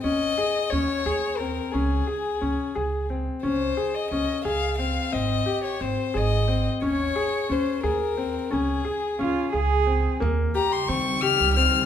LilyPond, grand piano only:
\new Staff \with { instrumentName = "Grand piano" } { \time 5/8 \key des \lydian \tempo 4 = 88 des'8 aes'8 des'8 aes'8 c'8 | des'8 aes'8 des'8 aes'8 c'8 | des'8 aes'8 des'8 aes'8 c'8 | c'8 g'8 c'8 aes'8 c'8 |
des'8 aes'8 des'8 aes'8 c'8 | des'8 aes'8 des'8 aes'8 c'8 | bes8 g'8 c'8 g'8 c'8 | }